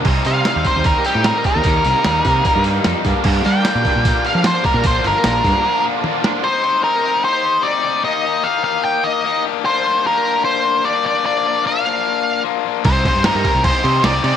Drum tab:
CC |x-------|--------|x-------|--------|
HH |-ooooooo|oooooooo|-ooooooo|oooo----|
SD |--o---o-|--o---o-|--o---o-|--o----o|
T1 |--------|--------|--------|------o-|
BD |o--oo--o|o--oo--o|o--oo--o|o--o----|

CC |--------|--------|--------|--------|
HH |--------|--------|--------|--------|
SD |--------|--------|--------|--------|
T1 |--------|--------|--------|--------|
BD |--------|--------|--------|--------|

CC |xxxxxxxx|
HH |--------|
SD |-oo---o-|
T1 |--------|
BD |oo-oo---|